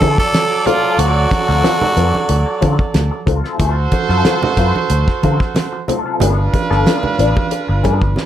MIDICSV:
0, 0, Header, 1, 8, 480
1, 0, Start_track
1, 0, Tempo, 652884
1, 729, Time_signature, 4, 2, 24, 8
1, 6070, End_track
2, 0, Start_track
2, 0, Title_t, "Horn section"
2, 0, Program_c, 0, 61
2, 0, Note_on_c, 0, 54, 92
2, 0, Note_on_c, 0, 69, 86
2, 0, Note_on_c, 0, 74, 97
2, 2382, Note_off_c, 0, 69, 0
2, 2382, Note_off_c, 0, 74, 0
2, 2383, Note_off_c, 0, 54, 0
2, 2649, Note_on_c, 0, 66, 93
2, 2649, Note_on_c, 0, 69, 96
2, 2649, Note_on_c, 0, 72, 105
2, 4298, Note_off_c, 0, 66, 0
2, 4299, Note_off_c, 0, 69, 0
2, 4299, Note_off_c, 0, 72, 0
2, 4567, Note_on_c, 0, 71, 100
2, 4568, Note_on_c, 0, 62, 86
2, 4568, Note_on_c, 0, 65, 87
2, 6070, Note_off_c, 0, 62, 0
2, 6070, Note_off_c, 0, 65, 0
2, 6070, Note_off_c, 0, 71, 0
2, 6070, End_track
3, 0, Start_track
3, 0, Title_t, "Tenor saxophone"
3, 0, Program_c, 1, 66
3, 0, Note_on_c, 1, 69, 112
3, 112, Note_off_c, 1, 69, 0
3, 142, Note_on_c, 1, 69, 110
3, 490, Note_on_c, 1, 65, 92
3, 501, Note_off_c, 1, 69, 0
3, 731, Note_on_c, 1, 66, 106
3, 742, Note_off_c, 1, 65, 0
3, 2169, Note_off_c, 1, 66, 0
3, 6070, End_track
4, 0, Start_track
4, 0, Title_t, "Clean electric guitar"
4, 0, Program_c, 2, 27
4, 12, Note_on_c, 2, 54, 75
4, 15, Note_on_c, 2, 60, 93
4, 19, Note_on_c, 2, 65, 95
4, 24, Note_on_c, 2, 69, 107
4, 130, Note_off_c, 2, 69, 0
4, 133, Note_off_c, 2, 65, 0
4, 139, Note_off_c, 2, 60, 0
4, 163, Note_off_c, 2, 54, 0
4, 485, Note_on_c, 2, 54, 61
4, 489, Note_on_c, 2, 60, 68
4, 493, Note_on_c, 2, 65, 72
4, 497, Note_on_c, 2, 69, 73
4, 589, Note_off_c, 2, 54, 0
4, 591, Note_off_c, 2, 60, 0
4, 593, Note_off_c, 2, 65, 0
4, 595, Note_off_c, 2, 69, 0
4, 612, Note_on_c, 2, 69, 57
4, 616, Note_on_c, 2, 65, 51
4, 619, Note_on_c, 2, 60, 47
4, 625, Note_on_c, 2, 54, 47
4, 704, Note_off_c, 2, 69, 0
4, 706, Note_off_c, 2, 65, 0
4, 708, Note_off_c, 2, 60, 0
4, 711, Note_off_c, 2, 54, 0
4, 722, Note_on_c, 2, 54, 85
4, 725, Note_on_c, 2, 60, 99
4, 729, Note_on_c, 2, 65, 102
4, 733, Note_on_c, 2, 69, 102
4, 843, Note_off_c, 2, 69, 0
4, 846, Note_off_c, 2, 65, 0
4, 851, Note_off_c, 2, 60, 0
4, 855, Note_off_c, 2, 54, 0
4, 1088, Note_on_c, 2, 69, 67
4, 1093, Note_on_c, 2, 65, 60
4, 1095, Note_on_c, 2, 60, 58
4, 1101, Note_on_c, 2, 54, 66
4, 1182, Note_off_c, 2, 69, 0
4, 1185, Note_off_c, 2, 65, 0
4, 1186, Note_off_c, 2, 60, 0
4, 1189, Note_off_c, 2, 54, 0
4, 1199, Note_on_c, 2, 54, 91
4, 1202, Note_on_c, 2, 60, 89
4, 1206, Note_on_c, 2, 65, 93
4, 1210, Note_on_c, 2, 69, 97
4, 1320, Note_off_c, 2, 69, 0
4, 1325, Note_off_c, 2, 65, 0
4, 1329, Note_off_c, 2, 60, 0
4, 1334, Note_off_c, 2, 54, 0
4, 1441, Note_on_c, 2, 54, 49
4, 1446, Note_on_c, 2, 60, 59
4, 1449, Note_on_c, 2, 65, 60
4, 1452, Note_on_c, 2, 71, 67
4, 1547, Note_off_c, 2, 54, 0
4, 1549, Note_off_c, 2, 60, 0
4, 1551, Note_off_c, 2, 65, 0
4, 1552, Note_off_c, 2, 71, 0
4, 1919, Note_on_c, 2, 54, 92
4, 1926, Note_on_c, 2, 60, 83
4, 1929, Note_on_c, 2, 65, 89
4, 1931, Note_on_c, 2, 69, 88
4, 2040, Note_off_c, 2, 69, 0
4, 2042, Note_off_c, 2, 65, 0
4, 2048, Note_off_c, 2, 60, 0
4, 2053, Note_off_c, 2, 54, 0
4, 2399, Note_on_c, 2, 54, 56
4, 2404, Note_on_c, 2, 60, 67
4, 2409, Note_on_c, 2, 65, 65
4, 2411, Note_on_c, 2, 69, 63
4, 2505, Note_off_c, 2, 54, 0
4, 2508, Note_off_c, 2, 60, 0
4, 2511, Note_off_c, 2, 65, 0
4, 2512, Note_off_c, 2, 69, 0
4, 2528, Note_on_c, 2, 69, 61
4, 2532, Note_on_c, 2, 65, 57
4, 2537, Note_on_c, 2, 60, 59
4, 2542, Note_on_c, 2, 54, 48
4, 2622, Note_off_c, 2, 69, 0
4, 2624, Note_off_c, 2, 65, 0
4, 2627, Note_off_c, 2, 60, 0
4, 2629, Note_off_c, 2, 54, 0
4, 2642, Note_on_c, 2, 54, 95
4, 2647, Note_on_c, 2, 60, 108
4, 2650, Note_on_c, 2, 65, 100
4, 2655, Note_on_c, 2, 69, 105
4, 2760, Note_off_c, 2, 69, 0
4, 2765, Note_off_c, 2, 65, 0
4, 2769, Note_off_c, 2, 60, 0
4, 2797, Note_off_c, 2, 54, 0
4, 3013, Note_on_c, 2, 69, 57
4, 3017, Note_on_c, 2, 65, 57
4, 3020, Note_on_c, 2, 60, 49
4, 3023, Note_on_c, 2, 54, 51
4, 3105, Note_off_c, 2, 69, 0
4, 3107, Note_off_c, 2, 65, 0
4, 3108, Note_off_c, 2, 60, 0
4, 3110, Note_off_c, 2, 54, 0
4, 3121, Note_on_c, 2, 54, 83
4, 3124, Note_on_c, 2, 60, 94
4, 3127, Note_on_c, 2, 65, 107
4, 3131, Note_on_c, 2, 69, 103
4, 3246, Note_off_c, 2, 69, 0
4, 3249, Note_off_c, 2, 65, 0
4, 3254, Note_off_c, 2, 54, 0
4, 3256, Note_off_c, 2, 60, 0
4, 3367, Note_on_c, 2, 54, 59
4, 3370, Note_on_c, 2, 60, 63
4, 3375, Note_on_c, 2, 65, 60
4, 3378, Note_on_c, 2, 71, 64
4, 3469, Note_off_c, 2, 54, 0
4, 3471, Note_off_c, 2, 60, 0
4, 3473, Note_off_c, 2, 65, 0
4, 3475, Note_off_c, 2, 71, 0
4, 3845, Note_on_c, 2, 54, 79
4, 3850, Note_on_c, 2, 60, 84
4, 3854, Note_on_c, 2, 65, 92
4, 3858, Note_on_c, 2, 69, 80
4, 3967, Note_off_c, 2, 69, 0
4, 3974, Note_off_c, 2, 65, 0
4, 3976, Note_off_c, 2, 54, 0
4, 3976, Note_off_c, 2, 60, 0
4, 4322, Note_on_c, 2, 54, 61
4, 4327, Note_on_c, 2, 60, 70
4, 4331, Note_on_c, 2, 65, 62
4, 4335, Note_on_c, 2, 69, 68
4, 4427, Note_off_c, 2, 54, 0
4, 4429, Note_off_c, 2, 60, 0
4, 4431, Note_off_c, 2, 65, 0
4, 4433, Note_off_c, 2, 69, 0
4, 4453, Note_on_c, 2, 69, 63
4, 4457, Note_on_c, 2, 65, 61
4, 4460, Note_on_c, 2, 60, 55
4, 4465, Note_on_c, 2, 54, 59
4, 4544, Note_off_c, 2, 69, 0
4, 4547, Note_off_c, 2, 65, 0
4, 4548, Note_off_c, 2, 60, 0
4, 4551, Note_off_c, 2, 54, 0
4, 4566, Note_on_c, 2, 53, 98
4, 4569, Note_on_c, 2, 59, 92
4, 4573, Note_on_c, 2, 62, 93
4, 4576, Note_on_c, 2, 69, 90
4, 4688, Note_off_c, 2, 69, 0
4, 4691, Note_off_c, 2, 62, 0
4, 4693, Note_off_c, 2, 59, 0
4, 4719, Note_off_c, 2, 53, 0
4, 4930, Note_on_c, 2, 69, 78
4, 4933, Note_on_c, 2, 62, 66
4, 4936, Note_on_c, 2, 59, 61
4, 4941, Note_on_c, 2, 53, 59
4, 5023, Note_off_c, 2, 69, 0
4, 5025, Note_off_c, 2, 62, 0
4, 5026, Note_off_c, 2, 59, 0
4, 5028, Note_off_c, 2, 53, 0
4, 5044, Note_on_c, 2, 53, 90
4, 5049, Note_on_c, 2, 59, 91
4, 5052, Note_on_c, 2, 62, 93
4, 5057, Note_on_c, 2, 69, 85
4, 5163, Note_off_c, 2, 69, 0
4, 5168, Note_off_c, 2, 62, 0
4, 5171, Note_off_c, 2, 59, 0
4, 5176, Note_off_c, 2, 53, 0
4, 5281, Note_on_c, 2, 53, 51
4, 5285, Note_on_c, 2, 59, 54
4, 5289, Note_on_c, 2, 62, 65
4, 5292, Note_on_c, 2, 71, 65
4, 5386, Note_off_c, 2, 53, 0
4, 5388, Note_off_c, 2, 59, 0
4, 5390, Note_off_c, 2, 62, 0
4, 5392, Note_off_c, 2, 71, 0
4, 5760, Note_on_c, 2, 53, 91
4, 5766, Note_on_c, 2, 59, 89
4, 5769, Note_on_c, 2, 62, 91
4, 5771, Note_on_c, 2, 69, 92
4, 5884, Note_off_c, 2, 69, 0
4, 5889, Note_off_c, 2, 62, 0
4, 5893, Note_off_c, 2, 59, 0
4, 5917, Note_off_c, 2, 53, 0
4, 6070, End_track
5, 0, Start_track
5, 0, Title_t, "Fingered electric bass"
5, 0, Program_c, 3, 33
5, 14, Note_on_c, 3, 50, 96
5, 113, Note_off_c, 3, 50, 0
5, 725, Note_on_c, 3, 38, 106
5, 919, Note_off_c, 3, 38, 0
5, 1094, Note_on_c, 3, 38, 95
5, 1185, Note_off_c, 3, 38, 0
5, 1446, Note_on_c, 3, 41, 98
5, 1549, Note_off_c, 3, 41, 0
5, 1686, Note_on_c, 3, 38, 97
5, 1789, Note_off_c, 3, 38, 0
5, 1930, Note_on_c, 3, 50, 101
5, 2031, Note_off_c, 3, 50, 0
5, 2166, Note_on_c, 3, 38, 98
5, 2268, Note_off_c, 3, 38, 0
5, 2403, Note_on_c, 3, 37, 84
5, 2507, Note_off_c, 3, 37, 0
5, 2644, Note_on_c, 3, 38, 102
5, 2838, Note_off_c, 3, 38, 0
5, 3009, Note_on_c, 3, 42, 95
5, 3102, Note_off_c, 3, 42, 0
5, 3360, Note_on_c, 3, 42, 85
5, 3465, Note_off_c, 3, 42, 0
5, 3603, Note_on_c, 3, 38, 93
5, 3707, Note_off_c, 3, 38, 0
5, 3850, Note_on_c, 3, 50, 98
5, 3951, Note_off_c, 3, 50, 0
5, 4564, Note_on_c, 3, 31, 102
5, 4758, Note_off_c, 3, 31, 0
5, 4931, Note_on_c, 3, 31, 86
5, 5023, Note_off_c, 3, 31, 0
5, 5284, Note_on_c, 3, 33, 93
5, 5388, Note_off_c, 3, 33, 0
5, 5655, Note_on_c, 3, 31, 84
5, 5745, Note_off_c, 3, 31, 0
5, 5771, Note_on_c, 3, 43, 96
5, 5872, Note_off_c, 3, 43, 0
5, 5891, Note_on_c, 3, 31, 101
5, 5983, Note_off_c, 3, 31, 0
5, 6070, End_track
6, 0, Start_track
6, 0, Title_t, "Muted clean electric guitar strokes"
6, 250, Note_on_c, 9, 29, 47
6, 324, Note_off_c, 9, 29, 0
6, 370, Note_on_c, 9, 29, 54
6, 443, Note_off_c, 9, 29, 0
6, 851, Note_on_c, 9, 29, 43
6, 925, Note_off_c, 9, 29, 0
6, 962, Note_on_c, 9, 29, 37
6, 1035, Note_off_c, 9, 29, 0
6, 1329, Note_on_c, 9, 29, 45
6, 1403, Note_off_c, 9, 29, 0
6, 1568, Note_on_c, 9, 29, 44
6, 1641, Note_off_c, 9, 29, 0
6, 1681, Note_on_c, 9, 29, 48
6, 1755, Note_off_c, 9, 29, 0
6, 1810, Note_on_c, 9, 29, 52
6, 1884, Note_off_c, 9, 29, 0
6, 2048, Note_on_c, 9, 29, 51
6, 2122, Note_off_c, 9, 29, 0
6, 2159, Note_on_c, 9, 29, 49
6, 2233, Note_off_c, 9, 29, 0
6, 2289, Note_on_c, 9, 29, 46
6, 2362, Note_off_c, 9, 29, 0
6, 2885, Note_on_c, 9, 29, 37
6, 2959, Note_off_c, 9, 29, 0
6, 3263, Note_on_c, 9, 29, 47
6, 3337, Note_off_c, 9, 29, 0
6, 3604, Note_on_c, 9, 29, 43
6, 3678, Note_off_c, 9, 29, 0
6, 3732, Note_on_c, 9, 29, 38
6, 3806, Note_off_c, 9, 29, 0
6, 3976, Note_on_c, 9, 29, 52
6, 4050, Note_off_c, 9, 29, 0
6, 4085, Note_on_c, 9, 29, 49
6, 4159, Note_off_c, 9, 29, 0
6, 4209, Note_on_c, 9, 29, 54
6, 4283, Note_off_c, 9, 29, 0
6, 4696, Note_on_c, 9, 29, 41
6, 4770, Note_off_c, 9, 29, 0
6, 4805, Note_on_c, 9, 29, 35
6, 4879, Note_off_c, 9, 29, 0
6, 5172, Note_on_c, 9, 29, 51
6, 5245, Note_off_c, 9, 29, 0
6, 5410, Note_on_c, 9, 29, 53
6, 5484, Note_off_c, 9, 29, 0
6, 5521, Note_on_c, 9, 29, 53
6, 5595, Note_off_c, 9, 29, 0
6, 5649, Note_on_c, 9, 29, 51
6, 5723, Note_off_c, 9, 29, 0
6, 5893, Note_on_c, 9, 29, 51
6, 5967, Note_off_c, 9, 29, 0
6, 6007, Note_on_c, 9, 29, 41
6, 6070, Note_off_c, 9, 29, 0
6, 6070, End_track
7, 0, Start_track
7, 0, Title_t, "Muted fingered electric bass strokes"
7, 1334, Note_on_c, 9, 29, 50
7, 1408, Note_off_c, 9, 29, 0
7, 3251, Note_on_c, 9, 29, 49
7, 3325, Note_off_c, 9, 29, 0
7, 5173, Note_on_c, 9, 29, 44
7, 5246, Note_off_c, 9, 29, 0
7, 6070, End_track
8, 0, Start_track
8, 0, Title_t, "Drums"
8, 6, Note_on_c, 9, 62, 45
8, 6, Note_on_c, 9, 63, 104
8, 14, Note_on_c, 9, 36, 85
8, 14, Note_on_c, 9, 42, 76
8, 79, Note_off_c, 9, 62, 0
8, 79, Note_off_c, 9, 63, 0
8, 87, Note_off_c, 9, 36, 0
8, 87, Note_off_c, 9, 42, 0
8, 134, Note_on_c, 9, 36, 117
8, 142, Note_on_c, 9, 38, 41
8, 208, Note_off_c, 9, 36, 0
8, 215, Note_off_c, 9, 38, 0
8, 242, Note_on_c, 9, 63, 67
8, 252, Note_on_c, 9, 42, 110
8, 255, Note_on_c, 9, 38, 127
8, 315, Note_off_c, 9, 63, 0
8, 325, Note_off_c, 9, 42, 0
8, 328, Note_off_c, 9, 38, 0
8, 488, Note_on_c, 9, 62, 30
8, 488, Note_on_c, 9, 64, 65
8, 493, Note_on_c, 9, 42, 71
8, 561, Note_off_c, 9, 62, 0
8, 561, Note_off_c, 9, 64, 0
8, 566, Note_off_c, 9, 42, 0
8, 728, Note_on_c, 9, 42, 113
8, 801, Note_off_c, 9, 42, 0
8, 966, Note_on_c, 9, 36, 99
8, 967, Note_on_c, 9, 62, 44
8, 967, Note_on_c, 9, 63, 85
8, 968, Note_on_c, 9, 42, 70
8, 1039, Note_off_c, 9, 36, 0
8, 1041, Note_off_c, 9, 42, 0
8, 1041, Note_off_c, 9, 62, 0
8, 1041, Note_off_c, 9, 63, 0
8, 1098, Note_on_c, 9, 38, 32
8, 1171, Note_off_c, 9, 38, 0
8, 1209, Note_on_c, 9, 38, 110
8, 1212, Note_on_c, 9, 42, 96
8, 1212, Note_on_c, 9, 62, 43
8, 1212, Note_on_c, 9, 63, 73
8, 1282, Note_off_c, 9, 38, 0
8, 1285, Note_off_c, 9, 42, 0
8, 1286, Note_off_c, 9, 62, 0
8, 1286, Note_off_c, 9, 63, 0
8, 1335, Note_on_c, 9, 64, 86
8, 1408, Note_off_c, 9, 64, 0
8, 1448, Note_on_c, 9, 42, 59
8, 1451, Note_on_c, 9, 62, 35
8, 1521, Note_off_c, 9, 42, 0
8, 1525, Note_off_c, 9, 62, 0
8, 1577, Note_on_c, 9, 63, 85
8, 1650, Note_off_c, 9, 63, 0
8, 1683, Note_on_c, 9, 42, 86
8, 1690, Note_on_c, 9, 62, 33
8, 1756, Note_off_c, 9, 42, 0
8, 1764, Note_off_c, 9, 62, 0
8, 1923, Note_on_c, 9, 38, 35
8, 1927, Note_on_c, 9, 63, 94
8, 1928, Note_on_c, 9, 42, 76
8, 1931, Note_on_c, 9, 36, 84
8, 1997, Note_off_c, 9, 38, 0
8, 2000, Note_off_c, 9, 63, 0
8, 2002, Note_off_c, 9, 42, 0
8, 2004, Note_off_c, 9, 36, 0
8, 2051, Note_on_c, 9, 36, 104
8, 2125, Note_off_c, 9, 36, 0
8, 2162, Note_on_c, 9, 63, 74
8, 2164, Note_on_c, 9, 42, 95
8, 2167, Note_on_c, 9, 38, 127
8, 2235, Note_off_c, 9, 63, 0
8, 2237, Note_off_c, 9, 42, 0
8, 2240, Note_off_c, 9, 38, 0
8, 2404, Note_on_c, 9, 36, 109
8, 2404, Note_on_c, 9, 64, 64
8, 2411, Note_on_c, 9, 42, 88
8, 2477, Note_off_c, 9, 64, 0
8, 2478, Note_off_c, 9, 36, 0
8, 2485, Note_off_c, 9, 42, 0
8, 2533, Note_on_c, 9, 38, 35
8, 2607, Note_off_c, 9, 38, 0
8, 2643, Note_on_c, 9, 42, 121
8, 2644, Note_on_c, 9, 36, 119
8, 2644, Note_on_c, 9, 62, 38
8, 2717, Note_off_c, 9, 36, 0
8, 2717, Note_off_c, 9, 42, 0
8, 2717, Note_off_c, 9, 62, 0
8, 2880, Note_on_c, 9, 42, 78
8, 2882, Note_on_c, 9, 36, 91
8, 2888, Note_on_c, 9, 62, 39
8, 2888, Note_on_c, 9, 63, 86
8, 2953, Note_off_c, 9, 42, 0
8, 2956, Note_off_c, 9, 36, 0
8, 2961, Note_off_c, 9, 62, 0
8, 2961, Note_off_c, 9, 63, 0
8, 3010, Note_on_c, 9, 38, 28
8, 3084, Note_off_c, 9, 38, 0
8, 3124, Note_on_c, 9, 38, 115
8, 3127, Note_on_c, 9, 42, 97
8, 3131, Note_on_c, 9, 62, 42
8, 3131, Note_on_c, 9, 63, 71
8, 3197, Note_off_c, 9, 38, 0
8, 3200, Note_off_c, 9, 42, 0
8, 3205, Note_off_c, 9, 62, 0
8, 3205, Note_off_c, 9, 63, 0
8, 3254, Note_on_c, 9, 64, 90
8, 3328, Note_off_c, 9, 64, 0
8, 3359, Note_on_c, 9, 38, 33
8, 3361, Note_on_c, 9, 42, 70
8, 3362, Note_on_c, 9, 36, 91
8, 3432, Note_off_c, 9, 38, 0
8, 3435, Note_off_c, 9, 36, 0
8, 3435, Note_off_c, 9, 42, 0
8, 3496, Note_on_c, 9, 63, 79
8, 3570, Note_off_c, 9, 63, 0
8, 3600, Note_on_c, 9, 42, 93
8, 3674, Note_off_c, 9, 42, 0
8, 3733, Note_on_c, 9, 36, 97
8, 3735, Note_on_c, 9, 38, 39
8, 3806, Note_off_c, 9, 36, 0
8, 3809, Note_off_c, 9, 38, 0
8, 3846, Note_on_c, 9, 63, 98
8, 3848, Note_on_c, 9, 42, 68
8, 3850, Note_on_c, 9, 36, 82
8, 3920, Note_off_c, 9, 63, 0
8, 3921, Note_off_c, 9, 42, 0
8, 3924, Note_off_c, 9, 36, 0
8, 3971, Note_on_c, 9, 36, 116
8, 3979, Note_on_c, 9, 38, 36
8, 4045, Note_off_c, 9, 36, 0
8, 4052, Note_off_c, 9, 38, 0
8, 4078, Note_on_c, 9, 63, 75
8, 4086, Note_on_c, 9, 42, 102
8, 4089, Note_on_c, 9, 38, 124
8, 4151, Note_off_c, 9, 63, 0
8, 4159, Note_off_c, 9, 42, 0
8, 4162, Note_off_c, 9, 38, 0
8, 4324, Note_on_c, 9, 64, 69
8, 4332, Note_on_c, 9, 42, 82
8, 4398, Note_off_c, 9, 64, 0
8, 4406, Note_off_c, 9, 42, 0
8, 4559, Note_on_c, 9, 64, 86
8, 4569, Note_on_c, 9, 42, 116
8, 4633, Note_off_c, 9, 64, 0
8, 4643, Note_off_c, 9, 42, 0
8, 4805, Note_on_c, 9, 36, 93
8, 4806, Note_on_c, 9, 42, 68
8, 4807, Note_on_c, 9, 62, 44
8, 4807, Note_on_c, 9, 63, 91
8, 4879, Note_off_c, 9, 36, 0
8, 4880, Note_off_c, 9, 42, 0
8, 4881, Note_off_c, 9, 62, 0
8, 4881, Note_off_c, 9, 63, 0
8, 4939, Note_on_c, 9, 38, 35
8, 5012, Note_off_c, 9, 38, 0
8, 5047, Note_on_c, 9, 62, 48
8, 5047, Note_on_c, 9, 63, 75
8, 5050, Note_on_c, 9, 38, 117
8, 5053, Note_on_c, 9, 42, 93
8, 5120, Note_off_c, 9, 62, 0
8, 5120, Note_off_c, 9, 63, 0
8, 5123, Note_off_c, 9, 38, 0
8, 5126, Note_off_c, 9, 42, 0
8, 5170, Note_on_c, 9, 64, 75
8, 5243, Note_off_c, 9, 64, 0
8, 5288, Note_on_c, 9, 62, 36
8, 5289, Note_on_c, 9, 42, 70
8, 5361, Note_off_c, 9, 62, 0
8, 5362, Note_off_c, 9, 42, 0
8, 5414, Note_on_c, 9, 63, 86
8, 5416, Note_on_c, 9, 36, 112
8, 5487, Note_off_c, 9, 63, 0
8, 5490, Note_off_c, 9, 36, 0
8, 5522, Note_on_c, 9, 42, 91
8, 5528, Note_on_c, 9, 62, 32
8, 5596, Note_off_c, 9, 42, 0
8, 5602, Note_off_c, 9, 62, 0
8, 5765, Note_on_c, 9, 38, 33
8, 5765, Note_on_c, 9, 63, 98
8, 5770, Note_on_c, 9, 42, 79
8, 5771, Note_on_c, 9, 36, 81
8, 5838, Note_off_c, 9, 38, 0
8, 5839, Note_off_c, 9, 63, 0
8, 5844, Note_off_c, 9, 42, 0
8, 5845, Note_off_c, 9, 36, 0
8, 5893, Note_on_c, 9, 36, 100
8, 5967, Note_off_c, 9, 36, 0
8, 5999, Note_on_c, 9, 62, 34
8, 5999, Note_on_c, 9, 63, 72
8, 6009, Note_on_c, 9, 38, 73
8, 6070, Note_off_c, 9, 38, 0
8, 6070, Note_off_c, 9, 62, 0
8, 6070, Note_off_c, 9, 63, 0
8, 6070, End_track
0, 0, End_of_file